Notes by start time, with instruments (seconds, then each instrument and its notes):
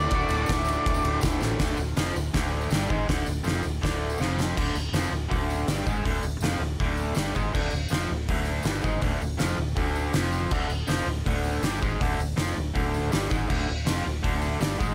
Already playing: overdriven electric guitar D2 A2 D3 A3 D4 F#4, lead electric guitar D5
0.02 tambourine
0.11 fingered electric bass D1, overdriven electric guitar D2 A2 D3 A3 F#4, kick, ride, tambourine
0.21 tambourine
0.29 fingered electric bass D1, ride, tambourine
0.38 tambourine
0.46 fingered electric bass D1, kick, ride, tambourine
0.50 snare
0.56 tambourine
0.65 ride, tambourine
0.75 tambourine
0.86 fingered electric bass D1, kick, ride, tambourine
0.94 tambourine
1.03 fingered electric bass D1, ride, tambourine
1.13 tambourine
1.21 fingered electric bass D1, kick, snare, ride, tambourine
1.32 tambourine
1.40 fingered electric bass A1, snare, tambourine
1.50 tambourine
1.59 fingered electric bass D1, overdriven electric guitar D2 D3, kick, snare, open hi-hat
1.77 fingered electric bass D1, overdriven electric guitar D2, tambourine
1.97 fingered electric bass F1, overdriven electric guitar F2 F3, snare, open hi-hat, tambourine
2.16 fingered electric bass D1, overdriven electric guitar D2, tambourine
2.34 fingered electric bass D1, overdriven electric guitar D2 D3, kick, snare, open hi-hat, tambourine
2.43 tambourine
2.51 tambourine
2.61 tambourine
2.70 fingered electric bass G1, overdriven electric guitar G2 G3, snare, open hi-hat, tambourine
2.89 fingered electric bass G#1, overdriven electric guitar G#2 G#3, kick
3.08 fingered electric bass D1, overdriven electric guitar D2 D3, kick, snare, open hi-hat
3.26 fingered electric bass D1, overdriven electric guitar D2, tambourine
3.44 fingered electric bass F1, overdriven electric guitar F2 F3, snare, open hi-hat, tambourine
3.54 tambourine
3.63 fingered electric bass D1, overdriven electric guitar D2, tambourine
3.82 fingered electric bass D1, overdriven electric guitar D2 D3, kick, snare, open hi-hat, tambourine
3.91 tambourine
4.00 tambourine
4.10 tambourine
4.18 fingered electric bass F1, overdriven electric guitar F2 F3, snare, tambourine
4.39 snare, tambourine
4.57 fingered electric bass D1, overdriven electric guitar D2 D3, kick, crash, tambourine
4.66 tambourine
4.75 fingered electric bass D1, overdriven electric guitar D2, tambourine
4.85 tambourine
4.92 fingered electric bass F1, overdriven electric guitar F2 F3, snare, open hi-hat, tambourine
5.03 tambourine
5.11 fingered electric bass D1, overdriven electric guitar D2, tambourine
5.30 fingered electric bass D1, overdriven electric guitar D2 D3, kick, open hi-hat
5.50 tambourine
5.60 tambourine
5.68 fingered electric bass G1, overdriven electric guitar G2 G3, snare, open hi-hat, tambourine
5.87 fingered electric bass G#1, overdriven electric guitar G#2 G#3, kick, tambourine
6.04 fingered electric bass D1, overdriven electric guitar D2 D3, kick, open hi-hat, tambourine
6.14 tambourine
6.23 fingered electric bass D1, overdriven electric guitar D2, tambourine
6.40 fingered electric bass F1, overdriven electric guitar F2 F3, open hi-hat, tambourine
6.44 snare
6.50 tambourine
6.59 fingered electric bass D1, overdriven electric guitar D2, tambourine
6.80 fingered electric bass D1, overdriven electric guitar D2 D3, kick, open hi-hat
6.97 tambourine
7.15 fingered electric bass G1, overdriven electric guitar G2 G3, snare, open hi-hat, tambourine
7.34 fingered electric bass G#1, overdriven electric guitar G#2 G#3, kick, tambourine
7.44 tambourine
7.52 fingered electric bass D1, overdriven electric guitar D2 D3, kick, tambourine, crash
7.62 tambourine
7.70 fingered electric bass D1, overdriven electric guitar D2, tambourine
7.89 fingered electric bass F1, overdriven electric guitar F2 F3, open hi-hat, tambourine
7.93 snare, tambourine
8.10 fingered electric bass D1, overdriven electric guitar D2
8.28 fingered electric bass D1, overdriven electric guitar D2 D3, kick, open hi-hat
8.45 tambourine
8.55 tambourine
8.63 fingered electric bass G1, overdriven electric guitar G2 G3, snare, open hi-hat, tambourine
8.82 fingered electric bass G#1, overdriven electric guitar G#2 G#3, kick, tambourine
8.92 tambourine
9.01 fingered electric bass D1, overdriven electric guitar D2 D3, kick, open hi-hat, tambourine
9.21 fingered electric bass D1, overdriven electric guitar D2, tambourine
9.37 fingered electric bass F1, overdriven electric guitar F2 F3, snare, open hi-hat, tambourine
9.49 tambourine
9.58 fingered electric bass D1, overdriven electric guitar D2, tambourine
9.68 tambourine
9.76 fingered electric bass D1, overdriven electric guitar D2 D3, kick, open hi-hat, tambourine
9.87 tambourine
9.96 tambourine
10.04 tambourine
10.13 fingered electric bass F1, overdriven electric guitar F2 F3, snare, open hi-hat, tambourine
10.24 tambourine
10.33 tambourine
10.42 tambourine
10.51 fingered electric bass D1, overdriven electric guitar D2 D3, kick, crash, tambourine
10.61 tambourine
10.69 fingered electric bass D1, overdriven electric guitar D2, tambourine
10.78 tambourine
10.87 fingered electric bass F1, overdriven electric guitar F2 F3, snare, open hi-hat, tambourine
10.98 tambourine
11.06 fingered electric bass D1, overdriven electric guitar D2, tambourine
11.26 fingered electric bass D1, overdriven electric guitar D2 D3, kick, open hi-hat
11.44 tambourine
11.55 tambourine
11.62 fingered electric bass G1, overdriven electric guitar G2 G3, snare, open hi-hat, tambourine
11.81 fingered electric bass G#1, overdriven electric guitar G#2 G#3, kick, tambourine
11.91 tambourine
12.00 fingered electric bass D1, overdriven electric guitar D2 D3, kick, open hi-hat, tambourine
12.11 tambourine
12.18 fingered electric bass D1, overdriven electric guitar D2, tambourine
12.30 tambourine
12.36 fingered electric bass F1, overdriven electric guitar F2 F3, snare, open hi-hat, tambourine
12.48 tambourine
12.56 fingered electric bass D1, overdriven electric guitar D2
12.74 fingered electric bass D1, overdriven electric guitar D2 D3, kick, open hi-hat
12.94 tambourine
13.04 tambourine
13.10 fingered electric bass G1, overdriven electric guitar G2 G3, snare, open hi-hat, tambourine
13.29 fingered electric bass G#1, overdriven electric guitar G#2 G#3, kick, tambourine
13.39 tambourine
13.48 fingered electric bass D1, overdriven electric guitar D2 D3, kick, tambourine, crash
13.59 tambourine
13.68 fingered electric bass D1, overdriven electric guitar D2
13.78 tambourine
13.85 fingered electric bass F1, overdriven electric guitar F2 F3, snare, open hi-hat, tambourine
14.05 fingered electric bass D1, overdriven electric guitar D2, tambourine
14.23 fingered electric bass D1, overdriven electric guitar D2 D3, kick, open hi-hat
14.42 tambourine
14.53 tambourine
14.60 fingered electric bass G1, overdriven electric guitar G2 G3, snare, open hi-hat, tambourine
14.78 fingered electric bass G#1, overdriven electric guitar G#2 G#3, kick, tambourine
14.90 tambourine